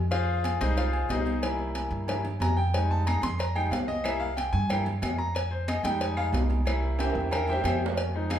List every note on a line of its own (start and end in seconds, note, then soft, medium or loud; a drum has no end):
0.00 0.55 F2 medium
0.11 0.57 F4 medium
0.11 0.57 G#4 medium
0.11 0.57 C5 medium
0.11 0.57 F5 loud
0.11 cowbell loud
0.11 high conga soft
0.11 low agogo medium
0.29 high conga soft
0.44 cowbell medium
0.44 high conga medium
0.44 low timbale medium
0.44 low agogo loud
0.60 1.07 C2 medium
0.60 0.82 G3 medium
0.60 0.83 G#3 soft
0.60 0.83 D#4 medium
0.60 0.76 G#4 medium
0.60 0.76 C5 medium
0.60 0.77 D#5 loud
0.60 cowbell medium
0.60 high conga loud
0.77 1.08 F4 medium
0.77 1.08 G#4 medium
0.77 1.08 C5 medium
0.77 1.08 F5 medium
0.77 cowbell medium
0.77 high conga soft
0.77 low agogo medium
0.93 high conga soft
0.93 low agogo loud
1.09 1.86 C2 medium
1.09 1.41 D#4 medium
1.09 1.41 G#4 medium
1.09 1.41 C5 medium
1.09 1.41 D#5 medium
1.09 cowbell medium
1.09 high conga medium
1.09 low timbale medium
1.26 high conga medium
1.26 low agogo medium
1.43 2.07 G3 medium
1.43 2.08 A#3 medium
1.43 2.08 E4 medium
1.43 cowbell loud
1.43 high conga soft
1.43 low agogo loud
1.59 high conga soft
1.75 cowbell medium
1.75 high conga medium
1.75 low timbale medium
1.75 low agogo medium
1.91 2.37 G2 loud
1.91 high conga soft
2.08 2.23 G3 medium
2.08 2.24 A#3 soft
2.08 2.23 E4 medium
2.08 cowbell loud
2.08 high conga soft
2.08 low conga loud
2.08 low agogo loud
2.25 high conga soft
2.25 low conga medium
2.25 low agogo medium
2.40 3.17 F2 loud
2.40 2.57 A#5 medium
2.40 cowbell medium
2.40 high conga medium
2.40 low timbale medium
2.40 low agogo loud
2.57 2.73 G5 loud
2.57 high conga soft
2.74 3.20 G3 medium
2.74 3.21 G#3 medium
2.74 3.21 D#4 medium
2.74 2.90 G#5 medium
2.74 cowbell loud
2.74 high conga soft
2.74 low agogo medium
2.91 3.06 A5 loud
2.91 high conga soft
3.07 3.23 A#5 loud
3.07 cowbell medium
3.07 high conga loud
3.07 low timbale medium
3.07 low agogo loud
3.07 claves medium
3.22 3.68 F2 medium
3.22 3.39 C6 loud
3.22 cowbell medium
3.22 high conga loud
3.39 3.55 A#5 medium
3.39 cowbell loud
3.39 high conga soft
3.39 low agogo medium
3.55 3.70 G3 soft
3.55 3.70 G#3 soft
3.55 3.71 D#4 medium
3.55 3.71 G5 medium
3.55 high conga soft
3.55 low agogo loud
3.55 claves medium
3.71 4.48 C2 medium
3.71 3.88 F5 medium
3.71 cowbell medium
3.71 high conga medium
3.71 low timbale medium
3.88 4.04 D#5 loud
3.88 high conga medium
3.88 low agogo medium
4.04 4.26 G3 medium
4.04 4.26 A#3 medium
4.04 4.26 E4 medium
4.04 4.20 E5 medium
4.04 cowbell loud
4.04 high conga soft
4.04 low agogo loud
4.04 claves medium
4.20 4.36 F5 loud
4.20 high conga soft
4.37 4.53 G5 medium
4.37 cowbell medium
4.37 high conga medium
4.37 low timbale medium
4.37 low agogo loud
4.53 4.99 G2 loud
4.53 4.69 G#5 loud
4.53 high conga soft
4.70 4.85 G3 soft
4.70 4.85 A#3 soft
4.70 4.85 E4 medium
4.70 4.80 G5 loud
4.70 cowbell loud
4.70 high conga soft
4.70 low conga medium
4.70 low agogo loud
4.70 claves medium
4.86 high conga soft
4.86 low conga medium
4.86 low agogo medium
5.02 5.79 F2 medium
5.02 cowbell medium
5.02 high conga medium
5.02 low timbale medium
5.02 low agogo loud
5.02 claves medium
5.18 5.35 A#5 medium
5.18 high conga soft
5.35 5.51 G#5 medium
5.35 cowbell loud
5.35 high conga soft
5.35 low agogo medium
5.51 5.67 C5 medium
5.51 high conga soft
5.68 5.84 D#5 medium
5.68 cowbell medium
5.68 high conga loud
5.68 low timbale medium
5.68 low agogo loud
5.68 claves medium
5.83 6.30 F2 medium
5.83 6.62 G3 medium
5.83 6.63 G#3 medium
5.83 6.63 D#4 medium
5.83 6.00 G5 loud
5.83 cowbell medium
5.83 high conga medium
6.01 6.17 G#5 medium
6.01 cowbell loud
6.01 high conga soft
6.01 low agogo medium
6.17 6.27 F5 loud
6.17 high conga soft
6.17 low agogo loud
6.17 claves medium
6.32 7.09 C2 medium
6.32 cowbell medium
6.32 high conga medium
6.32 low timbale loud
6.50 high conga medium
6.50 low agogo medium
6.66 7.93 G3 medium
6.66 7.94 A#3 soft
6.66 7.94 E4 medium
6.66 cowbell loud
6.66 high conga soft
6.66 low agogo loud
6.66 claves medium
6.83 high conga soft
6.99 7.30 G4 medium
6.99 7.30 C5 medium
6.99 7.30 E5 medium
6.99 7.30 G5 medium
6.99 cowbell medium
6.99 high conga medium
6.99 high timbale loud
6.99 low agogo medium
7.10 high timbale medium
7.15 7.61 E2 medium
7.15 high conga soft
7.20 high timbale medium
7.31 7.48 A#4 medium
7.31 7.48 E5 medium
7.31 7.47 G5 medium
7.31 7.48 A#5 medium
7.31 cowbell loud
7.31 high conga soft
7.31 low conga medium
7.31 high timbale medium
7.31 low agogo loud
7.31 claves medium
7.47 7.65 G4 medium
7.47 7.65 C5 medium
7.47 7.65 E5 medium
7.47 7.64 G5 loud
7.47 high conga soft
7.47 low conga medium
7.47 low agogo medium
7.53 low timbale loud
7.64 8.39 F2 medium
7.64 7.81 G4 medium
7.64 7.81 C5 medium
7.64 7.81 E5 medium
7.64 7.81 G5 medium
7.64 cowbell medium
7.64 high conga medium
7.64 low timbale medium
7.64 low agogo loud
7.64 claves medium
7.81 high conga soft
7.86 low timbale loud
7.97 cowbell loud
7.97 high conga soft
7.97 low agogo medium
8.14 8.39 F3 medium
8.14 8.39 G#3 soft
8.14 8.39 D#4 medium
8.14 high conga soft
8.30 8.39 G#4 medium
8.30 8.39 D#5 medium
8.30 8.39 F5 medium
8.30 8.39 G#5 medium
8.30 cowbell medium
8.30 high conga loud
8.30 low timbale medium
8.30 low agogo loud
8.30 claves medium